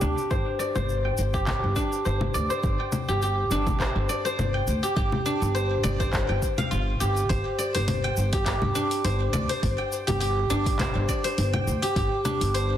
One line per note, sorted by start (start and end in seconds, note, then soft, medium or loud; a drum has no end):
0.00 0.13 D2 medium
0.00 1.75 D4 medium
0.00 1.33 G4 loud
0.00 0.30 C5 medium
0.00 0.59 D5 medium
0.00 0.85 G5 medium
0.00 low conga medium
0.00 shaker medium
0.18 shaker soft
0.30 0.42 G1 medium
0.30 0.75 C5 medium
0.30 kick loud
0.30 shaker soft
0.59 2.34 D5 medium
0.59 shaker medium
0.76 1.12 G1 medium
0.76 2.05 C5 loud
0.76 low conga medium
0.76 shaker soft
0.89 shaker soft
1.05 2.60 G5 medium
1.18 1.56 G1 medium
1.18 shaker medium
1.34 1.46 G4 medium
1.34 kick loud
1.34 shaker soft
1.47 3.08 G4 medium
1.47 kick loud
1.47 clap medium
1.47 low conga medium
1.47 shaker soft
1.64 1.73 G1 medium
1.76 3.51 D4 medium
1.76 kick medium
1.76 shaker medium
1.92 shaker soft
2.05 2.27 G1 medium
2.05 2.50 C5 medium
2.05 shaker soft
2.21 low conga medium
2.34 2.46 D2 medium
2.34 4.09 D5 loud
2.34 shaker medium
2.50 3.80 C5 medium
2.50 shaker soft
2.63 2.75 G1 medium
2.63 kick loud
2.63 shaker soft
2.80 4.35 G5 medium
2.92 low conga medium
2.92 shaker medium
3.08 3.45 G1 medium
3.08 3.22 G4 medium
3.08 shaker soft
3.22 4.83 G4 medium
3.22 shaker soft
3.51 3.89 G1 medium
3.51 5.25 D4 medium
3.51 shaker medium
3.67 kick loud
3.67 low conga medium
3.67 shaker soft
3.80 4.25 C5 medium
3.80 kick medium
3.80 clap medium
3.80 shaker soft
3.96 4.06 G1 medium
4.09 5.83 D5 medium
4.09 shaker medium
4.25 5.54 C5 medium
4.25 shaker soft
4.39 4.60 G1 medium
4.39 low conga medium
4.39 shaker soft
4.54 6.09 G5 medium
4.67 4.79 D2 medium
4.67 shaker medium
4.83 4.96 G4 medium
4.83 shaker soft
4.96 5.08 G1 medium
4.96 7.00 G4 loud
4.96 kick loud
4.96 shaker soft
5.12 low conga medium
5.26 8.06 D4 medium
5.26 shaker medium
5.42 5.78 G1 medium
5.42 shaker soft
5.55 5.99 C5 medium
5.55 shaker soft
5.83 6.22 G1 medium
5.83 7.58 D5 loud
5.83 low conga medium
5.83 shaker medium
6.00 7.29 C5 medium
6.00 kick loud
6.00 shaker soft
6.13 kick loud
6.13 clap medium
6.13 shaker soft
6.29 6.39 G1 medium
6.29 7.84 G5 medium
6.42 kick medium
6.42 shaker medium
6.58 8.24 F5 loud
6.58 low conga medium
6.58 shaker soft
6.71 6.93 G1 medium
6.71 9.23 F4 medium
6.71 shaker soft
7.00 7.23 G1 medium
7.00 8.32 G4 medium
7.00 shaker medium
7.17 shaker soft
7.29 7.41 G1 medium
7.29 7.74 C5 medium
7.29 kick loud
7.29 open hi-hat soft
7.29 shaker soft
7.59 9.33 D5 medium
7.59 shaker medium
7.75 8.11 G1 medium
7.75 9.04 C5 medium
7.75 open hi-hat soft
7.75 shaker soft
7.88 open hi-hat soft
7.88 low conga medium
7.88 shaker soft
8.04 9.59 G5 medium
8.17 8.55 G1 medium
8.17 shaker medium
8.33 8.46 G4 medium
8.33 kick loud
8.33 open hi-hat soft
8.33 shaker soft
8.46 10.07 G4 medium
8.46 kick medium
8.46 clap medium
8.46 open hi-hat soft
8.46 shaker soft
8.62 8.72 G1 medium
8.62 low conga medium
8.75 10.50 D4 medium
8.75 shaker medium
8.91 open hi-hat soft
8.91 shaker soft
9.04 9.26 G1 loud
9.04 9.49 C5 medium
9.04 open hi-hat soft
9.04 shaker soft
9.33 9.45 D2 medium
9.33 11.08 D5 medium
9.33 low conga medium
9.33 shaker medium
9.49 10.79 C5 medium
9.49 open hi-hat medium
9.49 shaker soft
9.63 9.74 G1 medium
9.63 kick loud
9.63 open hi-hat soft
9.63 shaker soft
9.78 11.33 G5 medium
9.92 shaker medium
10.07 10.44 G1 medium
10.07 10.20 G4 medium
10.07 open hi-hat medium
10.07 low conga medium
10.07 shaker soft
10.20 11.82 G4 medium
10.20 open hi-hat soft
10.20 shaker soft
10.50 10.88 G1 medium
10.50 12.25 D4 loud
10.50 shaker medium
10.66 kick loud
10.66 open hi-hat medium
10.66 shaker soft
10.79 11.24 C5 medium
10.79 kick medium
10.79 clap medium
10.79 open hi-hat soft
10.79 low conga medium
10.79 shaker soft
10.95 11.05 G1 medium
11.09 12.78 D5 medium
11.09 kick medium
11.09 shaker medium
11.24 12.54 C5 loud
11.24 open hi-hat medium
11.24 shaker soft
11.38 11.60 G1 medium
11.38 open hi-hat soft
11.38 shaker soft
11.53 12.78 G5 medium
11.53 low conga medium
11.67 11.78 D2 medium
11.67 shaker medium
11.82 11.96 G4 medium
11.82 open hi-hat medium
11.82 shaker soft
11.96 12.07 G1 loud
11.96 12.78 G4 medium
11.96 kick loud
11.96 open hi-hat soft
11.96 shaker soft
12.25 12.78 D4 medium
12.25 low conga medium
12.25 shaker medium
12.41 12.77 G1 medium
12.41 open hi-hat medium
12.41 shaker soft
12.54 12.78 C5 medium
12.54 open hi-hat soft
12.54 shaker soft